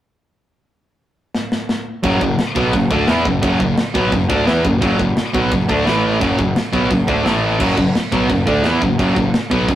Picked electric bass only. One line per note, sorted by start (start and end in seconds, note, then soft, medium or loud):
2.04 2.20 F#1 medium
2.22 2.38 F#1 medium
2.56 2.72 B1 medium
2.74 2.90 F#1 medium
2.91 3.07 D2 loud
3.08 3.24 E2 medium
3.26 3.42 F#1 medium
3.43 3.59 F#1 medium
3.60 3.76 F#1 medium
3.95 4.11 B1 medium
4.13 4.29 F#1 medium
4.30 4.46 D2 medium
4.48 4.64 E2 loud
4.65 4.81 F#1 medium
4.82 4.98 F#1 medium
5.00 5.16 F#1 medium
5.35 5.51 B1 medium
5.52 5.68 F#1 medium
5.69 5.85 D2 loud
5.87 6.19 A1 medium
6.21 6.37 F#1 medium
6.39 6.55 F#1 medium
6.74 6.90 B1 medium
6.91 7.07 F#1 medium
7.08 7.24 D2 loud
7.25 7.58 A1 loud
7.60 7.76 F#1 medium
7.78 7.94 F#1 medium
8.12 8.28 B1 loud
8.30 8.46 F#1 medium
8.47 8.63 D2 medium
8.65 8.81 E2 medium
8.82 8.98 F#1 medium
8.99 9.15 F#1 medium
9.16 9.32 F#1 medium
9.52 9.67 B1 medium
9.68 9.75 F#1 medium